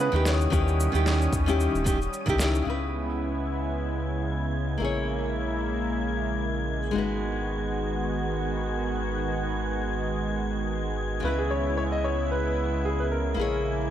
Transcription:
Already playing: analog synth pad C#3 G#3 B3 F#5, synth texture D#6
0.00 grand piano B4, cabasa
0.12 analog synth bass D#2, nylon-string guitar D#3 C#4 E4
0.16 nylon-string guitar G4, grand piano B4
0.25 analog synth pad G3 C#4, grand piano C#5, snare, cabasa
0.41 cabasa
0.50 analog synth bass D#2, nylon-string guitar D#3 C#4 E4 G4, kick, cabasa
0.68 cabasa
0.80 cabasa
0.92 analog synth bass D#2, nylon-string guitar D#3 C#4 E4 G4, cabasa
1.06 snare, cabasa
1.22 cabasa
1.32 analog synth bass D#2, kick, cabasa
1.46 nylon-string guitar D#3 C#4 E4 G4, cabasa
1.60 cabasa
1.74 analog synth bass D#1, cabasa
1.84 nylon-string guitar D#3 C#4 E4 G4, kick, cabasa
2.02 cabasa
2.13 cabasa
2.26 analog synth bass C#2, nylon-string guitar D#3 C#4 E4 G4, kick, cabasa
2.38 nylon-string guitar D#3 C#4 E4 G4, snare, cabasa
2.55 cabasa
2.62 analog synth bass C#2, nylon-string guitar C#3 C#4, analog synth pad C#3 B3
2.66 analog synth pad G#3 E4, nylon-string guitar E4 B4, synth texture G#6
4.78 analog synth bass A#1, nylon-string guitar A#3 E4, analog synth pad E4
4.82 analog synth pad A#3, nylon-string guitar G#4 C#5
6.91 analog synth bass G#1, nylon-string guitar G#3 D#4
6.95 analog synth pad D#3 B3 F#4, nylon-string guitar F#4 B4
11.20 analog synth bass C#2, nylon-string guitar C#3 C#4, analog synth pad C#3 B3 E4
11.25 nylon-string guitar E4 B4, grand piano B4
11.39 grand piano G#4
11.51 grand piano C#5
11.78 grand piano C#5
11.92 grand piano D#5
12.04 grand piano C#5
12.32 grand piano B4
12.85 grand piano G#4
13.00 grand piano B4
13.12 grand piano A#4
13.34 analog synth bass A#1, nylon-string guitar A#3 E4, analog synth pad A#3 E4
13.39 nylon-string guitar G#4 C#5

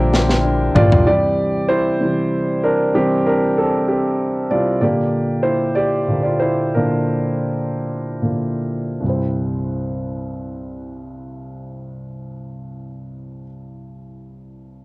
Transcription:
Already playing: upright bass A#1, grand piano D3 G3 A#3 D4 E4 G4 A#4 C5 D5, steel-string acoustic guitar A#3 D4 G4
0.13 steel-string acoustic guitar G4, snare
0.29 snare
0.45 steel-string acoustic guitar D4
0.75 upright bass A#1, steel-string acoustic guitar A#3, grand piano F4 D5, mid tom
0.92 floor tom
1.05 grand piano C3 E3 G3 G4 D5
1.69 grand piano E4 C5
2.00 grand piano C3 E3 G3
2.64 grand piano D4 A#4
2.94 grand piano C3 E3 G3 C4 G4
3.26 grand piano D4 A#4
3.58 grand piano C4 A4
3.88 grand piano C4 G4
4.51 grand piano C3 G3 E4 F4 D5
4.81 grand piano A#2 D3 A#3 G4 D5
5.43 grand piano E4 C5
5.75 grand piano G4 D5
6.08 grand piano A#2 D3 A#3
6.23 grand piano F4 D5
6.40 grand piano E4 C5
6.74 grand piano A#2 D3 A#3 D4 A#4
8.22 grand piano A#2 D3 A#3
9.00 grand piano C2 G2 G3
9.06 grand piano C4 E4 C5

